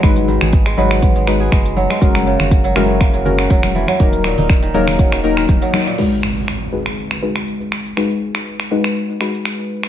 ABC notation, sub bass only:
X:1
M:4/4
L:1/16
Q:"Swing 16ths" 1/4=121
K:G#m
V:1 name="Sub bass" clef=bass
G,,,3 G,,,3 G,,,3 G,,,3 F,,,3 z | F,,,3 F,,,3 F,,,3 F,,,3 E,,,3 z | D,,,3 D,,,3 D,,,3 D,,,3 D,,, z3 | z16 |
z16 |]